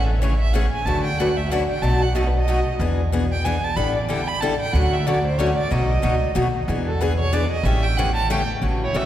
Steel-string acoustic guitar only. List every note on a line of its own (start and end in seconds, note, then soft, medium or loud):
0.22 0.32 C#3 medium
0.22 0.32 E3 medium
0.22 0.33 A3 medium
0.22 0.33 C#4 medium
0.22 0.33 G#4 medium
0.54 0.65 C#3 medium
0.54 0.65 E3 medium
0.54 0.65 A3 loud
0.54 0.65 C#4 medium
0.54 0.65 G#4 loud
0.87 1.07 D3 medium
0.87 1.07 F#3 medium
0.87 1.07 A3 medium
0.87 1.07 D4 medium
0.87 1.07 F#4 medium
0.87 1.07 B4 medium
1.20 1.30 D3 medium
1.20 1.30 F#3 medium
1.20 1.30 A3 medium
1.20 1.30 D4 medium
1.20 1.30 F#4 medium
1.20 1.31 B4 medium
1.51 1.62 D3 loud
1.51 1.62 F#3 medium
1.51 1.62 A3 medium
1.51 1.62 D4 medium
1.51 1.62 F#4 medium
1.51 1.63 B4 medium
1.83 2.03 B2 medium
1.83 2.03 F#3 medium
1.83 2.03 A3 medium
1.83 2.03 D#4 medium
1.83 2.04 F#4 medium
2.15 2.26 B2 medium
2.15 2.26 F#3 medium
2.15 2.27 A3 medium
2.15 2.27 D#4 medium
2.15 2.27 F#4 loud
2.48 2.59 B2 medium
2.48 2.59 F#3 medium
2.48 2.59 A3 medium
2.48 2.59 D#4 medium
2.48 2.59 F#4 loud
2.80 3.00 E3 medium
2.80 3.01 B3 medium
2.80 3.01 D4 medium
2.80 3.01 G#4 medium
3.12 3.23 E3 medium
3.12 3.24 B3 loud
3.12 3.24 D4 medium
3.12 3.24 G#4 loud
3.45 3.56 E3 medium
3.45 3.56 B3 medium
3.45 3.56 D4 loud
3.45 3.57 G#4 loud
3.76 3.97 D3 medium
3.76 3.97 G3 medium
3.76 3.97 D4 medium
3.76 3.97 E4 medium
3.76 3.97 A4 medium
4.09 4.20 D3 medium
4.09 4.20 G3 medium
4.09 4.21 D4 medium
4.09 4.21 E4 medium
4.09 4.21 A4 loud
4.42 4.53 D3 medium
4.42 4.53 G3 medium
4.42 4.53 D4 loud
4.42 4.53 E4 medium
4.42 4.53 A4 loud
4.74 4.94 D3 medium
4.74 4.95 F#3 medium
4.74 4.95 A3 medium
4.74 4.95 C#4 medium
4.74 4.95 F#4 medium
5.07 5.18 D3 medium
5.07 5.18 F#3 medium
5.07 5.18 A3 medium
5.07 5.18 C#4 loud
5.07 5.18 F#4 medium
5.39 5.50 D3 loud
5.39 5.50 F#3 loud
5.39 5.50 A3 loud
5.39 5.50 C#4 loud
5.39 5.50 F#4 loud
5.70 5.91 B2 medium
5.70 5.91 F#3 medium
5.70 5.91 A3 medium
5.70 5.92 D#4 medium
5.70 5.92 F#4 medium
6.02 6.14 B2 medium
6.02 6.14 F#3 loud
6.02 6.14 A3 medium
6.02 6.14 D#4 loud
6.02 6.14 F#4 medium
6.35 6.46 B2 medium
6.35 6.46 F#3 medium
6.35 6.47 A3 loud
6.35 6.47 D#4 loud
6.35 6.47 F#4 loud
6.69 6.89 E3 medium
6.69 6.89 B3 medium
6.69 6.89 D4 medium
6.69 6.89 G#4 medium
7.01 7.11 E3 medium
7.01 7.12 B3 medium
7.01 7.12 D4 medium
7.01 7.12 G#4 loud
7.33 7.44 E3 medium
7.33 7.44 B3 medium
7.33 7.44 D4 loud
7.33 7.44 G#4 loud
7.65 7.85 C#3 medium
7.65 7.85 E3 medium
7.65 7.86 A3 medium
7.65 7.86 C#4 medium
7.65 7.86 G4 medium
7.98 8.09 C#3 medium
7.98 8.09 E3 loud
7.98 8.09 A3 medium
7.98 8.09 C#4 loud
7.98 8.09 G4 loud
8.30 8.41 C#3 medium
8.30 8.41 E3 loud
8.30 8.41 A3 loud
8.30 8.41 C#4 loud
8.30 8.41 G4 loud
8.62 8.82 C#3 medium
8.62 8.82 E3 medium
8.62 8.82 A3 medium
8.62 8.82 C#4 medium
8.62 8.83 F#4 medium
8.94 9.05 C#3 medium
8.94 9.05 E3 medium
8.94 9.05 A3 medium
8.94 9.05 C#4 medium
8.94 9.05 F#4 medium